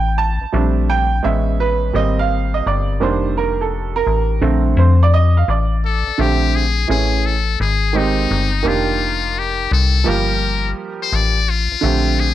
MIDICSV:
0, 0, Header, 1, 4, 480
1, 0, Start_track
1, 0, Key_signature, -2, "major"
1, 0, Tempo, 705882
1, 361, Time_signature, 4, 2, 24, 8
1, 8393, End_track
2, 0, Start_track
2, 0, Title_t, "Muted trumpet"
2, 0, Program_c, 0, 59
2, 3980, Note_on_c, 0, 69, 82
2, 4219, Note_on_c, 0, 67, 97
2, 4230, Note_off_c, 0, 69, 0
2, 4458, Note_on_c, 0, 68, 92
2, 4468, Note_off_c, 0, 67, 0
2, 4689, Note_off_c, 0, 68, 0
2, 4697, Note_on_c, 0, 68, 83
2, 4938, Note_on_c, 0, 69, 84
2, 4948, Note_off_c, 0, 68, 0
2, 5169, Note_off_c, 0, 69, 0
2, 5179, Note_on_c, 0, 68, 85
2, 5420, Note_on_c, 0, 63, 92
2, 5430, Note_off_c, 0, 68, 0
2, 5902, Note_on_c, 0, 65, 92
2, 5912, Note_off_c, 0, 63, 0
2, 6383, Note_on_c, 0, 67, 92
2, 6393, Note_off_c, 0, 65, 0
2, 6612, Note_off_c, 0, 67, 0
2, 6617, Note_on_c, 0, 69, 107
2, 6859, Note_on_c, 0, 70, 98
2, 6869, Note_off_c, 0, 69, 0
2, 7287, Note_off_c, 0, 70, 0
2, 7496, Note_on_c, 0, 72, 109
2, 7583, Note_on_c, 0, 74, 109
2, 7593, Note_off_c, 0, 72, 0
2, 7817, Note_on_c, 0, 65, 101
2, 7827, Note_off_c, 0, 74, 0
2, 8294, Note_on_c, 0, 68, 115
2, 8304, Note_off_c, 0, 65, 0
2, 8393, Note_off_c, 0, 68, 0
2, 8393, End_track
3, 0, Start_track
3, 0, Title_t, "Upright piano"
3, 0, Program_c, 1, 0
3, 0, Note_on_c, 1, 79, 94
3, 123, Note_on_c, 1, 81, 93
3, 129, Note_off_c, 1, 79, 0
3, 358, Note_on_c, 1, 55, 53
3, 360, Note_on_c, 1, 57, 55
3, 361, Note_on_c, 1, 60, 51
3, 366, Note_on_c, 1, 62, 59
3, 610, Note_on_c, 1, 79, 102
3, 616, Note_off_c, 1, 81, 0
3, 707, Note_off_c, 1, 55, 0
3, 709, Note_off_c, 1, 57, 0
3, 709, Note_off_c, 1, 60, 0
3, 712, Note_off_c, 1, 62, 0
3, 835, Note_on_c, 1, 56, 57
3, 836, Note_on_c, 1, 59, 45
3, 841, Note_on_c, 1, 61, 63
3, 847, Note_on_c, 1, 76, 87
3, 853, Note_off_c, 1, 79, 0
3, 1090, Note_on_c, 1, 71, 98
3, 1091, Note_off_c, 1, 76, 0
3, 1294, Note_off_c, 1, 56, 0
3, 1295, Note_off_c, 1, 59, 0
3, 1297, Note_off_c, 1, 61, 0
3, 1315, Note_on_c, 1, 55, 49
3, 1320, Note_on_c, 1, 58, 48
3, 1325, Note_on_c, 1, 60, 57
3, 1331, Note_on_c, 1, 75, 98
3, 1333, Note_off_c, 1, 71, 0
3, 1489, Note_off_c, 1, 75, 0
3, 1492, Note_on_c, 1, 77, 93
3, 1728, Note_on_c, 1, 75, 81
3, 1732, Note_off_c, 1, 77, 0
3, 1808, Note_off_c, 1, 75, 0
3, 1815, Note_on_c, 1, 74, 77
3, 2011, Note_off_c, 1, 55, 0
3, 2013, Note_off_c, 1, 58, 0
3, 2016, Note_off_c, 1, 60, 0
3, 2040, Note_on_c, 1, 51, 62
3, 2043, Note_on_c, 1, 55, 52
3, 2044, Note_on_c, 1, 58, 47
3, 2046, Note_on_c, 1, 62, 58
3, 2055, Note_off_c, 1, 74, 0
3, 2057, Note_on_c, 1, 72, 82
3, 2295, Note_on_c, 1, 70, 88
3, 2296, Note_off_c, 1, 72, 0
3, 2451, Note_off_c, 1, 70, 0
3, 2456, Note_on_c, 1, 69, 63
3, 2671, Note_off_c, 1, 69, 0
3, 2692, Note_on_c, 1, 70, 99
3, 2973, Note_off_c, 1, 51, 0
3, 2975, Note_off_c, 1, 55, 0
3, 2975, Note_off_c, 1, 58, 0
3, 2976, Note_off_c, 1, 62, 0
3, 3000, Note_on_c, 1, 50, 61
3, 3002, Note_on_c, 1, 57, 58
3, 3006, Note_on_c, 1, 60, 66
3, 3138, Note_off_c, 1, 70, 0
3, 3256, Note_on_c, 1, 72, 73
3, 3349, Note_off_c, 1, 50, 0
3, 3350, Note_off_c, 1, 57, 0
3, 3352, Note_off_c, 1, 60, 0
3, 3411, Note_off_c, 1, 72, 0
3, 3418, Note_on_c, 1, 74, 85
3, 3493, Note_off_c, 1, 74, 0
3, 3493, Note_on_c, 1, 75, 95
3, 3649, Note_off_c, 1, 75, 0
3, 3652, Note_on_c, 1, 77, 72
3, 3722, Note_off_c, 1, 77, 0
3, 3737, Note_on_c, 1, 74, 73
3, 4182, Note_off_c, 1, 74, 0
3, 4201, Note_on_c, 1, 50, 68
3, 4208, Note_on_c, 1, 57, 61
3, 4216, Note_on_c, 1, 60, 57
3, 4223, Note_on_c, 1, 67, 73
3, 4504, Note_off_c, 1, 50, 0
3, 4508, Note_off_c, 1, 57, 0
3, 4512, Note_off_c, 1, 60, 0
3, 4515, Note_off_c, 1, 67, 0
3, 4676, Note_on_c, 1, 52, 62
3, 4681, Note_on_c, 1, 57, 56
3, 4688, Note_on_c, 1, 61, 56
3, 4696, Note_on_c, 1, 68, 64
3, 4982, Note_off_c, 1, 52, 0
3, 4984, Note_off_c, 1, 57, 0
3, 4988, Note_off_c, 1, 61, 0
3, 4992, Note_off_c, 1, 68, 0
3, 5391, Note_on_c, 1, 51, 73
3, 5401, Note_on_c, 1, 56, 63
3, 5405, Note_on_c, 1, 60, 66
3, 5412, Note_on_c, 1, 67, 73
3, 5763, Note_off_c, 1, 51, 0
3, 5767, Note_off_c, 1, 56, 0
3, 5770, Note_off_c, 1, 60, 0
3, 5773, Note_off_c, 1, 67, 0
3, 5866, Note_on_c, 1, 51, 80
3, 5874, Note_on_c, 1, 58, 65
3, 5881, Note_on_c, 1, 62, 65
3, 5886, Note_on_c, 1, 67, 77
3, 6758, Note_off_c, 1, 51, 0
3, 6762, Note_off_c, 1, 58, 0
3, 6765, Note_off_c, 1, 62, 0
3, 6768, Note_off_c, 1, 67, 0
3, 6827, Note_on_c, 1, 53, 81
3, 6835, Note_on_c, 1, 55, 73
3, 6842, Note_on_c, 1, 58, 72
3, 6846, Note_on_c, 1, 67, 84
3, 7718, Note_off_c, 1, 53, 0
3, 7722, Note_off_c, 1, 55, 0
3, 7725, Note_off_c, 1, 58, 0
3, 7727, Note_off_c, 1, 67, 0
3, 8030, Note_on_c, 1, 50, 70
3, 8036, Note_on_c, 1, 57, 55
3, 8046, Note_on_c, 1, 60, 57
3, 8051, Note_on_c, 1, 67, 70
3, 8339, Note_off_c, 1, 50, 0
3, 8342, Note_off_c, 1, 57, 0
3, 8347, Note_off_c, 1, 60, 0
3, 8349, Note_off_c, 1, 67, 0
3, 8393, End_track
4, 0, Start_track
4, 0, Title_t, "FM bass"
4, 0, Program_c, 2, 39
4, 0, Note_on_c, 2, 33, 102
4, 261, Note_off_c, 2, 33, 0
4, 282, Note_on_c, 2, 33, 47
4, 314, Note_off_c, 2, 33, 0
4, 366, Note_on_c, 2, 34, 113
4, 820, Note_off_c, 2, 34, 0
4, 851, Note_on_c, 2, 33, 96
4, 1302, Note_off_c, 2, 33, 0
4, 1323, Note_on_c, 2, 32, 109
4, 1778, Note_off_c, 2, 32, 0
4, 1811, Note_on_c, 2, 31, 99
4, 2034, Note_off_c, 2, 31, 0
4, 2049, Note_on_c, 2, 29, 101
4, 2738, Note_off_c, 2, 29, 0
4, 2765, Note_on_c, 2, 33, 84
4, 2991, Note_off_c, 2, 33, 0
4, 3004, Note_on_c, 2, 34, 117
4, 3231, Note_off_c, 2, 34, 0
4, 3242, Note_on_c, 2, 41, 103
4, 3697, Note_off_c, 2, 41, 0
4, 3729, Note_on_c, 2, 33, 105
4, 4103, Note_off_c, 2, 33, 0
4, 4129, Note_on_c, 2, 33, 44
4, 4159, Note_off_c, 2, 33, 0
4, 4209, Note_on_c, 2, 34, 106
4, 4661, Note_off_c, 2, 34, 0
4, 4689, Note_on_c, 2, 33, 104
4, 5141, Note_off_c, 2, 33, 0
4, 5168, Note_on_c, 2, 32, 113
4, 5621, Note_off_c, 2, 32, 0
4, 5649, Note_on_c, 2, 31, 107
4, 5873, Note_off_c, 2, 31, 0
4, 5882, Note_on_c, 2, 29, 87
4, 6574, Note_off_c, 2, 29, 0
4, 6606, Note_on_c, 2, 36, 95
4, 6832, Note_off_c, 2, 36, 0
4, 6846, Note_on_c, 2, 31, 95
4, 7299, Note_off_c, 2, 31, 0
4, 7564, Note_on_c, 2, 33, 94
4, 7941, Note_off_c, 2, 33, 0
4, 7967, Note_on_c, 2, 33, 42
4, 7998, Note_off_c, 2, 33, 0
4, 8046, Note_on_c, 2, 34, 102
4, 8393, Note_off_c, 2, 34, 0
4, 8393, End_track
0, 0, End_of_file